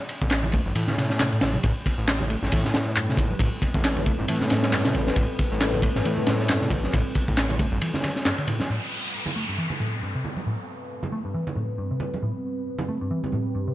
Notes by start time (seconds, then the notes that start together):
0.09 ride
0.22 A1, kick
0.30 snare, clap, ride
0.43 ride, high conga, low conga
0.52 A3, kick, ride
0.66 A1 G2
0.75 A2 E3, ride
0.87 snare, low conga
0.97 C3, snare, ride, high conga
1.10 snare
1.19 C3, snare, clap, ride
1.32 A2, ride
1.41 A1, snare, ride, low conga
1.53 C3, high conga
1.63 A1 A2 G3 C4 A4 B4, kick, ride
1.86 kick, ride
1.98 A1
2.08 snare, clap, ride
2.20 high conga, low conga
2.30 A3, ride
2.43 A1 G2, snare
2.52 A2 E3, kick, ride
2.64 snare, low conga
2.74 A2, snare, ride, high conga
2.96 G2, clap, ride
3.09 C3, snare
3.17 A1, kick, ride, low conga
3.31 high conga
3.39 A1 A2, kick, ride
3.62 kick, ride
3.74 A1, kick
3.84 snare, clap, ride
3.97 ride, high conga, low conga
4.06 A3, kick, ride
4.19 A1 G2
4.28 A2 E3, ride
4.40 snare, low conga
4.50 A2, snare, ride, high conga
4.63 snare, ride
4.72 G2, snare, clap, ride
4.85 C3, snare, ride
4.94 A1, ride, low conga
5.07 snare, high conga
5.16 A1 A2, kick, ride
5.39 kick, ride
5.52 A1
5.61 snare, clap, ride
5.74 high conga, low conga
5.82 A3, kick, ride
5.95 A1 G2, snare
6.05 A2 E3, ride
6.17 low conga
6.27 A2, snare, ride, high conga
6.40 snare
6.48 G2, snare, clap, ride
6.61 C3, snare
6.70 A1, kick, ride, low conga
6.83 snare, high conga
6.93 A1 A2, kick, ride
7.15 kick, ride
7.28 A1, kick
7.37 snare, clap, ride
7.49 ride, high conga, low conga
7.59 A3, kick, ride
7.72 A1 G2
7.81 E3, ride
7.94 snare, low conga
8.03 D3, snare, ride, high conga
8.16 snare
8.25 G2, snare, clap, ride
8.38 D3, ride
8.48 A2, ride, low conga
8.60 snare, high conga
8.70 A2 G3 C4 A4 B4, downlifter
9.26 high conga, low conga
9.36 A3
9.48 G2
9.58 E3
9.70 low conga
9.80 A2, high conga
10.02 G2
10.15 C3
10.25 low conga
10.37 high conga
10.46 A2
11.03 high conga, low conga
11.12 A3
11.25 G2
11.34 E3
11.47 low conga
11.55 A2, high conga
11.78 G2
11.91 C3
12.00 low conga
12.14 high conga
12.22 A2 G4
12.79 high conga, low conga
12.89 A3
13.01 G2
13.11 E3
13.24 low conga
13.32 A2, high conga
13.55 G2
13.68 C3